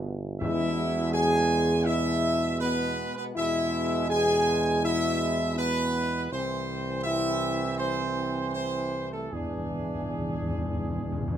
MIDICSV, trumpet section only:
0, 0, Header, 1, 2, 480
1, 0, Start_track
1, 0, Tempo, 729927
1, 270, Time_signature, 4, 2, 24, 8
1, 1710, Tempo, 754717
1, 2670, Tempo, 737101
1, 5070, Tempo, 769231
1, 7304, End_track
2, 0, Start_track
2, 0, Title_t, "Trumpet section"
2, 0, Program_c, 0, 61
2, 265, Note_on_c, 0, 76, 116
2, 719, Note_off_c, 0, 76, 0
2, 740, Note_on_c, 0, 80, 127
2, 1196, Note_off_c, 0, 80, 0
2, 1217, Note_on_c, 0, 76, 127
2, 1704, Note_on_c, 0, 71, 125
2, 1705, Note_off_c, 0, 76, 0
2, 2047, Note_off_c, 0, 71, 0
2, 2067, Note_on_c, 0, 71, 108
2, 2124, Note_off_c, 0, 71, 0
2, 2194, Note_on_c, 0, 76, 123
2, 2643, Note_off_c, 0, 76, 0
2, 2666, Note_on_c, 0, 80, 127
2, 3121, Note_off_c, 0, 80, 0
2, 3149, Note_on_c, 0, 76, 127
2, 3603, Note_off_c, 0, 76, 0
2, 3626, Note_on_c, 0, 71, 127
2, 4079, Note_off_c, 0, 71, 0
2, 4104, Note_on_c, 0, 72, 108
2, 4559, Note_off_c, 0, 72, 0
2, 4574, Note_on_c, 0, 76, 126
2, 5038, Note_off_c, 0, 76, 0
2, 5056, Note_on_c, 0, 72, 113
2, 5511, Note_off_c, 0, 72, 0
2, 5534, Note_on_c, 0, 72, 107
2, 5873, Note_off_c, 0, 72, 0
2, 5894, Note_on_c, 0, 69, 85
2, 6011, Note_off_c, 0, 69, 0
2, 6021, Note_on_c, 0, 68, 80
2, 7304, Note_off_c, 0, 68, 0
2, 7304, End_track
0, 0, End_of_file